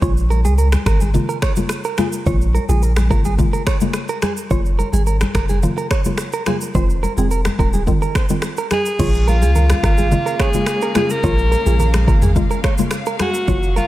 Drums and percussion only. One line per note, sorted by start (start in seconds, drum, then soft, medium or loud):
0.02 kick loud
0.02 low conga medium
0.02 shaker medium
0.17 shaker soft
0.31 high conga medium
0.31 shaker soft
0.45 high conga medium
0.45 shaker medium
0.58 shaker medium
0.72 finger snap medium
0.72 cross-stick medium
0.72 high conga medium
0.72 shaker medium
0.86 finger snap medium
0.86 kick medium
0.86 cross-stick medium
0.86 shaker medium
1.00 high conga medium
1.00 shaker medium
1.14 low conga medium
1.14 shaker medium
1.29 shaker medium
1.42 finger snap medium
1.42 kick medium
1.42 cross-stick loud
1.42 shaker soft
1.56 high conga medium
1.56 shaker loud
1.69 finger snap medium
1.69 cross-stick medium
1.69 shaker medium
1.84 shaker soft
1.98 finger snap medium
1.98 cross-stick medium
1.98 high conga loud
1.98 shaker medium
2.13 shaker medium
2.26 kick loud
2.26 low conga medium
2.26 shaker medium
2.41 shaker soft
2.55 high conga medium
2.55 shaker medium
2.69 high conga medium
2.69 shaker medium
2.83 shaker medium
2.96 finger snap medium
2.96 cross-stick medium
2.96 high conga medium
2.96 shaker medium
3.10 kick medium
3.10 shaker soft
3.25 high conga medium
3.25 shaker medium
3.39 kick medium
3.39 low conga medium
3.39 shaker medium
3.54 shaker medium
3.67 finger snap medium
3.67 kick medium
3.67 cross-stick loud
3.67 shaker soft
3.81 high conga medium
3.81 shaker loud
3.93 finger snap medium
3.93 cross-stick medium
3.93 shaker medium
4.09 shaker soft
4.22 finger snap medium
4.22 cross-stick medium
4.22 high conga medium
4.22 shaker medium
4.37 shaker medium
4.51 kick loud
4.51 low conga medium
4.51 shaker medium
4.65 shaker soft
4.79 high conga medium
4.79 shaker medium
4.94 high conga medium
4.94 shaker medium
5.07 shaker medium
5.21 finger snap medium
5.21 cross-stick medium
5.21 high conga medium
5.21 shaker medium
5.35 finger snap medium
5.35 kick medium
5.35 cross-stick medium
5.35 shaker medium
5.49 high conga medium
5.49 shaker medium
5.63 low conga medium
5.63 shaker medium
5.78 shaker medium
5.91 finger snap medium
5.91 kick medium
5.91 cross-stick loud
5.91 shaker soft
6.05 high conga medium
6.05 shaker loud
6.18 finger snap medium
6.18 cross-stick medium
6.18 shaker medium
6.33 shaker medium
6.46 finger snap medium
6.46 cross-stick medium
6.46 high conga medium
6.46 shaker medium
6.61 shaker medium
6.75 kick loud
6.75 low conga medium
6.75 shaker medium
6.90 shaker soft
7.04 high conga medium
7.04 shaker medium
7.18 high conga medium
7.18 shaker medium
7.31 shaker medium
7.45 finger snap medium
7.45 cross-stick medium
7.45 high conga medium
7.45 shaker medium
7.59 kick medium
7.59 shaker medium
7.73 high conga medium
7.73 shaker medium
7.87 kick medium
7.87 low conga medium
7.87 shaker medium
8.02 shaker medium
8.15 finger snap medium
8.15 kick medium
8.15 cross-stick medium
8.15 shaker medium
8.29 high conga medium
8.29 shaker loud
8.42 finger snap medium
8.42 cross-stick medium
8.42 shaker medium
8.57 shaker soft
8.71 finger snap medium
8.71 cross-stick medium
8.71 high conga medium
8.71 shaker medium
8.86 shaker medium
8.99 kick loud
8.99 crash medium
8.99 low conga medium
8.99 shaker medium
9.14 shaker soft
9.28 high conga medium
9.28 shaker medium
9.42 high conga medium
9.42 shaker medium
9.55 low conga medium
9.55 shaker medium
9.70 finger snap medium
9.70 cross-stick loud
9.70 high conga medium
9.70 shaker medium
9.83 finger snap medium
9.83 kick medium
9.83 cross-stick medium
9.83 shaker medium
9.98 high conga medium
9.98 shaker medium
10.12 low conga medium
10.12 shaker medium
10.27 shaker medium
10.40 finger snap medium
10.40 kick medium
10.40 cross-stick loud
10.40 shaker medium
10.54 high conga medium
10.54 shaker loud
10.66 finger snap medium
10.66 cross-stick medium
10.66 shaker medium
10.81 shaker soft
10.95 finger snap medium
10.95 cross-stick medium
10.95 high conga medium
10.95 shaker medium
11.10 shaker medium
11.24 kick loud
11.24 low conga medium
11.24 shaker medium
11.38 shaker soft
11.52 high conga medium
11.52 shaker medium
11.66 high conga medium
11.66 shaker medium
11.80 low conga medium
11.80 shaker medium
11.94 finger snap medium
11.94 cross-stick medium
11.94 high conga medium
11.94 shaker medium
12.08 kick medium
12.08 shaker medium
12.22 mid tom loud
12.22 high conga medium
12.22 shaker medium
12.36 kick medium
12.36 low conga medium
12.36 shaker medium
12.51 shaker medium
12.64 finger snap medium
12.64 kick medium
12.64 cross-stick medium
12.64 shaker soft
12.78 high conga medium
12.78 shaker loud
12.91 finger snap medium
12.91 cross-stick medium
12.91 shaker medium
13.06 shaker medium
13.19 finger snap medium
13.19 cross-stick medium
13.19 high conga medium
13.19 shaker medium
13.34 shaker medium
13.48 kick loud
13.48 low conga medium
13.48 shaker medium
13.63 shaker medium
13.77 high conga medium
13.77 shaker medium